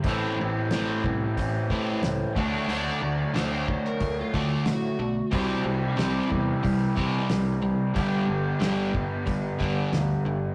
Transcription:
<<
  \new Staff \with { instrumentName = "Electric slide guitar" } { \time 4/4 \key g \major \tempo 4 = 91 r1 | d''4 c''16 c''8 bes'8 f'8. fis'4~ | fis'4 r2. | r1 | }
  \new Staff \with { instrumentName = "Overdriven electric guitar" } { \time 4/4 \key g \major <a, e c' e' a'>2.~ <a, e c' e' a'>8 <d fis a d' fis'>8~ | <d fis a d' fis'>2.~ <d fis a d' fis'>8 r8 | <c e g e' g'>1 | <g, d g b d' g'>1 | }
  \new Staff \with { instrumentName = "Overdriven electric guitar" } { \clef bass \time 4/4 \key g \major <a, e a>8 <a, e>8 <a, e a>8 <a, e>8 <a, e>8 <a, e a>8 <a, e>8 <d a d'>8 | <d a d'>8 <d a>8 <d a d'>8 <d a>8 <d a>8 <d a d'>8 <d a>8 <d a>8 | <c g c'>8 <c g>8 <c g c'>8 <c g>8 <c g>8 <c g c'>8 <c g>8 <c g>8 | <g, d g>8 <g, d>8 <g, d g>8 <g, d>8 <g, d>8 <g, d g>8 <g, d>8 <g, d>8 | }
  \new Staff \with { instrumentName = "Fingered electric bass" } { \clef bass \time 4/4 \key g \major a,,8 a,,8 a,,8 c,8 a,,8 a,8 cis,8 d,8 | d,8 d,8 d,4 d,8 d,8 a,8 b,,8 | c,8 c,8 c,8 e,8 c,8 c8 c,4 | g,,8 g,,8 g,,4 g,,8 g,,8 d,8 g,,8 | }
  \new DrumStaff \with { instrumentName = "Drums" } \drummode { \time 4/4 <hho bd>4 <hho sn>8 bd8 <hho bd>8 bd8 <hho sn>8 bd8 | hho4 <hho sn>8 bd16 sn16 <hho bd>8 bd8 <hho sn>4 | <hho bd>4 <hho sn>8 bd8 <hho bd>8 bd8 <hho sn>4 | <hho bd>4 <hho sn>8 bd8 <hho bd>8 bd8 <hho sn>4 | }
>>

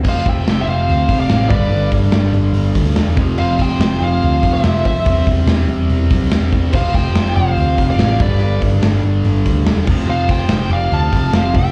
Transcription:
<<
  \new Staff \with { instrumentName = "Lead electric guitar" } { \time 4/4 \key f \lydian \tempo 4 = 143 f''8 g''8~ \tuplet 3/2 { g''8 e''16 f''8.~ } f''8. f''8. d''8~ | d''8 r2. r8 | f''8 g''4 f''4~ f''16 e''8. e''8~ | e''8 r2. r8 |
f''8 g''4 f''4~ f''16 f''8. d''8~ | d''8 r2. r8 | f''8 g''4 f''8 a''4 f''8 g''8 | }
  \new Staff \with { instrumentName = "Lead electric guitar" } { \time 4/4 \key f \lydian c''8 e''8~ \tuplet 3/2 { e''8 c''16 c''8.~ } c''8. d''8. b'8~ | b'8 r2. r8 | c''8 c''4 c''4~ c''16 c''8. c''8~ | c''8 r2. r8 |
c''8 c''4 c''4~ c''16 d''8. b'8~ | b'8 r2. r8 | c''8 c''4 d''8 f''4 c''8 e''8 | }
  \new Staff \with { instrumentName = "Distorted electric guitar" } { \clef bass \time 4/4 \key f \lydian <f, c f>2.~ <f, c f>8 <g, d g>8~ | <g, d g>2.~ <g, d g>8 <f, c f>8~ | <f, c f>2.~ <f, c f>8 r8 | <c g c'>1 |
<f, c f>2.~ <f, c f>8 <g, d g>8~ | <g, d g>2.~ <g, d g>8 <f, c f>8~ | <f, c f>2.~ <f, c f>8 r8 | }
  \new Staff \with { instrumentName = "Picked electric bass" } { \clef bass \time 4/4 \key f \lydian f,,4 f,,8 f,,8 d,8 f,,8 a,,8 g,,8 | g,,8 g,,8 g,,8 g,,8 g,,8 d,8 e,,8 f,,8 | f,,4 f,,8 f,,8 d,8 f,,8 f,,8 f,8 | e,,8 e,,8 e,,8 e,,8 e,,8 b,,8 e,,8 e,,8 |
f,,4 f,,8 f,,8 d,8 f,,8 a,,8 g,,8 | g,,8 g,,8 g,,8 g,,8 g,,8 d,8 e,,8 f,,8 | f,,4 f,,8 f,,8 d,8 f,,8 f,,8 f,,8 | }
  \new DrumStaff \with { instrumentName = "Drums" } \drummode { \time 4/4 <cymc bd>8 <hho bd>8 <hho sn>8 hho8 hho8 <hho bd>8 <hho sn>8 <hho bd>8 | hho8 <hho bd>8 <hho sn>8 hho8 hho8 <hho bd>8 <hho sn>8 <hho bd>8 | cymc8 <hho bd>8 <hho sn>8 hho8 hho8 <hho bd>8 <hho sn>8 <hho bd>8 | <hho bd>8 <hho bd>8 <hho sn>8 hho8 hho8 <hho bd>8 <hho sn>8 <hho bd>8 |
<cymc bd>8 <hho bd>8 <hho sn>8 hho8 hho8 <hho bd>8 <hho sn>8 <hho bd>8 | hho8 <hho bd>8 <hho sn>8 hho8 hho8 <hho bd>8 <hho sn>8 <cymc bd>8 | r8 <hho bd>8 <hho sn>8 hho8 hho8 <hho bd>8 <hho sn>8 <hho bd>8 | }
>>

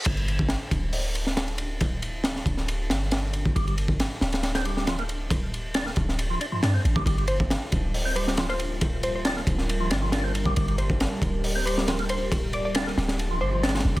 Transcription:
<<
  \new Staff \with { instrumentName = "Synth pluck" } { \time 4/4 \key g \minor \tempo 4 = 137 r1 | r1 | r1 | r1 |
r8 c''8 r4. c''8 r16 c''8 r16 | r8 c''16 c''16 r2. | r8 c''8 r4. c''8 r8 c''8 | r8 d''16 d''16 r4. c''8. r8. | }
  \new Staff \with { instrumentName = "Analog synth pad" } { \time 4/4 \key g \minor << { r1 | r1 | r1 | r1 |
<g bes'>1~ | <g bes'>1~ | <g bes'>1~ | <g bes'>1 | } \\ { r1 | r1 | r1 | r1 |
f'1~ | f'1 | g'1~ | g'1 | } >> }
  \new Staff \with { instrumentName = "Tonewheel organ" } { \clef bass \time 4/4 \key g \minor r1 | r1 | g16 g16 r4. r16 c'16 g8 f16 bes16 r8 | r4 d'16 bes16 r8. f16 d'16 f16 d'16 c'16 r16 g16 |
g16 g16 r4. r16 c'16 g8 f16 bes16 r8 | r4 d'16 bes16 r8. f16 d'16 f16 d'16 c'16 r16 g16 | g16 g16 r4. r16 c'16 g8 f16 bes16 r8 | r4 d'16 bes16 r8. f16 g16 f16 d'16 f16 r16 g16 | }
  \new Staff \with { instrumentName = "808-style bass" } { \clef bass \time 4/4 \key g \minor g,,4~ g,,16 r16 d,,2~ d,,8~ | d,,4. d,,4 g,,4. | g,,4~ g,,16 r16 d,,2~ d,,8~ | d,,4. d,,4 r16 g,16 g,16 r16 a,,16 r16 |
g,,4~ g,,16 r16 d,,2~ d,,8~ | d,,4. d,,4 g,,4. | g,,4~ g,,16 r16 d,,2~ d,,8~ | d,,4. d,,4 g,,4 f,,16 d,,16 | }
  \new DrumStaff \with { instrumentName = "Drums" } \drummode { \time 4/4 <cymc bd cymr>16 cymr16 cymr16 bd16 <cymr sn>8 <bd cymr>8 hho8 cymr16 sn16 <cymr sn>16 cymr16 cymr8 | <bd cymr>8 cymr8 <cymr sn>16 sn16 <bd cymr>16 sn16 cymr8 <cymr sn>8 <cymr sn>8 cymr16 bd16 | <bd cymr>16 cymr16 cymr16 bd16 <cymr sn>8 <cymr sn>16 <cymr sn>16 <cymr sn>16 <cymr sn>16 cymr16 sn16 <cymr sn>16 cymr16 cymr8 | <bd cymr>8 cymr8 <cymr sn>16 sn16 <bd cymr>16 sn16 cymr8 cymr8 <cymr sn>8 cymr16 bd16 |
<bd cymr>16 cymr16 cymr16 bd16 <cymr sn>8 <bd cymr>8 hho8 cymr16 sn16 <cymr sn>16 cymr16 cymr8 | <bd cymr>8 cymr8 <cymr sn>16 sn16 <bd cymr>16 sn16 cymr8 <cymr sn>8 <cymr sn>8 cymr16 bd16 | <bd cymr>16 cymr16 cymr16 bd16 <cymr sn>8 <bd cymr>8 hho8 cymr16 sn16 <cymr sn>16 cymr16 cymr8 | <bd cymr>8 cymr8 <cymr sn>16 sn16 <cymr sn>16 <cymr sn>16 cymr4 <cymr sn>32 <cymr sn>32 <cymr sn>32 <cymr sn>16. <bd cymr>16 | }
>>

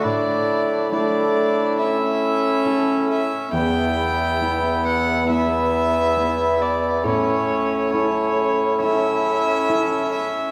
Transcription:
<<
  \new Staff \with { instrumentName = "Violin" } { \time 4/4 \key a \mixolydian \tempo 4 = 68 d''4 d''4 e''4. e''8 | g''4. fis''8 e''4. d''8 | cis''4 cis''4 e''4. e''8 | }
  \new Staff \with { instrumentName = "Cor anglais" } { \time 4/4 \key a \mixolydian e'4 e'4 e'4. r8 | e'2 e'2 | e'4 e'4 e'4. r8 | }
  \new Staff \with { instrumentName = "Harp" } { \time 4/4 \key a \mixolydian <a a'>4 <a e' a'>2 <cis' e' a'>4~ | <cis' e' a'>4 <b e' b'>4 <b e' b'>4 <b e' b'>4~ | <b e' b'>4 <cis' e' a'>4 <cis' e' a'>4 <cis' e' a'>4 | }
  \new Staff \with { instrumentName = "Harp" } { \clef bass \time 4/4 \key a \mixolydian a,2.~ a,8 r8 | e,1 | a,1 | }
  \new Staff \with { instrumentName = "Viola" } { \time 4/4 \key a \mixolydian d'4 d'4 cis'2 | b2 b2 | cis'4 cis'4 cis'2 | }
  \new Staff \with { instrumentName = "Bassoon" } { \clef bass \time 4/4 \key a \mixolydian a,2.~ a,8 r8 | e,1 | a,2.~ a,8 r8 | }
>>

